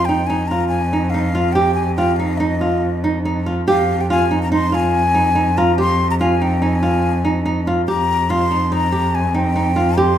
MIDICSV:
0, 0, Header, 1, 4, 480
1, 0, Start_track
1, 0, Tempo, 421941
1, 1770, Time_signature, 5, 2, 24, 8
1, 11581, End_track
2, 0, Start_track
2, 0, Title_t, "Flute"
2, 0, Program_c, 0, 73
2, 57, Note_on_c, 0, 79, 83
2, 303, Note_on_c, 0, 80, 81
2, 320, Note_off_c, 0, 79, 0
2, 544, Note_on_c, 0, 82, 76
2, 561, Note_off_c, 0, 80, 0
2, 770, Note_off_c, 0, 82, 0
2, 776, Note_on_c, 0, 80, 80
2, 1250, Note_on_c, 0, 77, 66
2, 1267, Note_off_c, 0, 80, 0
2, 1735, Note_on_c, 0, 79, 73
2, 1752, Note_off_c, 0, 77, 0
2, 1978, Note_off_c, 0, 79, 0
2, 1985, Note_on_c, 0, 80, 67
2, 2214, Note_off_c, 0, 80, 0
2, 2221, Note_on_c, 0, 79, 75
2, 2459, Note_on_c, 0, 77, 69
2, 2477, Note_off_c, 0, 79, 0
2, 2703, Note_on_c, 0, 75, 69
2, 2720, Note_off_c, 0, 77, 0
2, 3679, Note_off_c, 0, 75, 0
2, 4190, Note_on_c, 0, 77, 77
2, 4560, Note_on_c, 0, 79, 71
2, 4577, Note_off_c, 0, 77, 0
2, 4667, Note_off_c, 0, 79, 0
2, 4672, Note_on_c, 0, 80, 79
2, 4999, Note_off_c, 0, 80, 0
2, 5033, Note_on_c, 0, 82, 71
2, 5136, Note_off_c, 0, 82, 0
2, 5153, Note_on_c, 0, 84, 88
2, 5397, Note_on_c, 0, 80, 86
2, 5414, Note_off_c, 0, 84, 0
2, 6342, Note_on_c, 0, 82, 75
2, 6359, Note_off_c, 0, 80, 0
2, 6578, Note_off_c, 0, 82, 0
2, 6590, Note_on_c, 0, 84, 84
2, 6917, Note_off_c, 0, 84, 0
2, 6946, Note_on_c, 0, 82, 70
2, 6997, Note_off_c, 0, 82, 0
2, 7059, Note_on_c, 0, 80, 73
2, 7301, Note_on_c, 0, 79, 75
2, 7318, Note_off_c, 0, 80, 0
2, 7538, Note_on_c, 0, 80, 73
2, 7555, Note_off_c, 0, 79, 0
2, 8493, Note_off_c, 0, 80, 0
2, 8967, Note_on_c, 0, 82, 78
2, 9441, Note_on_c, 0, 84, 82
2, 9458, Note_off_c, 0, 82, 0
2, 9926, Note_on_c, 0, 82, 84
2, 9944, Note_off_c, 0, 84, 0
2, 10407, Note_on_c, 0, 80, 80
2, 10424, Note_off_c, 0, 82, 0
2, 10638, Note_on_c, 0, 79, 79
2, 10656, Note_off_c, 0, 80, 0
2, 11362, Note_on_c, 0, 84, 77
2, 11379, Note_off_c, 0, 79, 0
2, 11581, Note_off_c, 0, 84, 0
2, 11581, End_track
3, 0, Start_track
3, 0, Title_t, "Nylon-string guitar"
3, 0, Program_c, 1, 24
3, 99, Note_on_c, 1, 63, 61
3, 250, Note_off_c, 1, 63, 0
3, 337, Note_on_c, 1, 63, 63
3, 490, Note_off_c, 1, 63, 0
3, 582, Note_on_c, 1, 65, 50
3, 890, Note_off_c, 1, 65, 0
3, 1056, Note_on_c, 1, 63, 58
3, 1210, Note_off_c, 1, 63, 0
3, 1299, Note_on_c, 1, 63, 68
3, 1452, Note_off_c, 1, 63, 0
3, 1532, Note_on_c, 1, 65, 62
3, 1688, Note_off_c, 1, 65, 0
3, 1767, Note_on_c, 1, 67, 70
3, 2081, Note_off_c, 1, 67, 0
3, 2251, Note_on_c, 1, 65, 68
3, 2408, Note_off_c, 1, 65, 0
3, 2497, Note_on_c, 1, 63, 61
3, 2651, Note_off_c, 1, 63, 0
3, 2730, Note_on_c, 1, 63, 68
3, 2887, Note_off_c, 1, 63, 0
3, 2969, Note_on_c, 1, 65, 54
3, 3283, Note_off_c, 1, 65, 0
3, 3457, Note_on_c, 1, 63, 63
3, 3612, Note_off_c, 1, 63, 0
3, 3701, Note_on_c, 1, 63, 65
3, 3855, Note_off_c, 1, 63, 0
3, 3940, Note_on_c, 1, 65, 64
3, 4094, Note_off_c, 1, 65, 0
3, 4181, Note_on_c, 1, 67, 73
3, 4492, Note_off_c, 1, 67, 0
3, 4666, Note_on_c, 1, 65, 67
3, 4819, Note_off_c, 1, 65, 0
3, 4902, Note_on_c, 1, 63, 59
3, 5056, Note_off_c, 1, 63, 0
3, 5138, Note_on_c, 1, 63, 69
3, 5293, Note_off_c, 1, 63, 0
3, 5371, Note_on_c, 1, 65, 59
3, 5684, Note_off_c, 1, 65, 0
3, 5852, Note_on_c, 1, 63, 62
3, 6009, Note_off_c, 1, 63, 0
3, 6089, Note_on_c, 1, 63, 66
3, 6247, Note_off_c, 1, 63, 0
3, 6345, Note_on_c, 1, 65, 64
3, 6498, Note_off_c, 1, 65, 0
3, 6576, Note_on_c, 1, 67, 71
3, 6887, Note_off_c, 1, 67, 0
3, 7060, Note_on_c, 1, 65, 69
3, 7214, Note_off_c, 1, 65, 0
3, 7298, Note_on_c, 1, 63, 58
3, 7452, Note_off_c, 1, 63, 0
3, 7528, Note_on_c, 1, 63, 64
3, 7685, Note_off_c, 1, 63, 0
3, 7765, Note_on_c, 1, 65, 55
3, 8078, Note_off_c, 1, 65, 0
3, 8243, Note_on_c, 1, 63, 63
3, 8401, Note_off_c, 1, 63, 0
3, 8480, Note_on_c, 1, 63, 66
3, 8639, Note_off_c, 1, 63, 0
3, 8728, Note_on_c, 1, 65, 60
3, 8884, Note_off_c, 1, 65, 0
3, 8964, Note_on_c, 1, 67, 72
3, 9276, Note_off_c, 1, 67, 0
3, 9443, Note_on_c, 1, 65, 70
3, 9600, Note_off_c, 1, 65, 0
3, 9676, Note_on_c, 1, 63, 57
3, 9835, Note_off_c, 1, 63, 0
3, 9916, Note_on_c, 1, 63, 69
3, 10075, Note_off_c, 1, 63, 0
3, 10150, Note_on_c, 1, 67, 59
3, 10465, Note_off_c, 1, 67, 0
3, 10630, Note_on_c, 1, 63, 69
3, 10790, Note_off_c, 1, 63, 0
3, 10872, Note_on_c, 1, 63, 64
3, 11030, Note_off_c, 1, 63, 0
3, 11103, Note_on_c, 1, 65, 65
3, 11264, Note_off_c, 1, 65, 0
3, 11346, Note_on_c, 1, 67, 70
3, 11581, Note_off_c, 1, 67, 0
3, 11581, End_track
4, 0, Start_track
4, 0, Title_t, "Cello"
4, 0, Program_c, 2, 42
4, 0, Note_on_c, 2, 41, 67
4, 4171, Note_off_c, 2, 41, 0
4, 4171, Note_on_c, 2, 41, 69
4, 8963, Note_off_c, 2, 41, 0
4, 8963, Note_on_c, 2, 41, 71
4, 11581, Note_off_c, 2, 41, 0
4, 11581, End_track
0, 0, End_of_file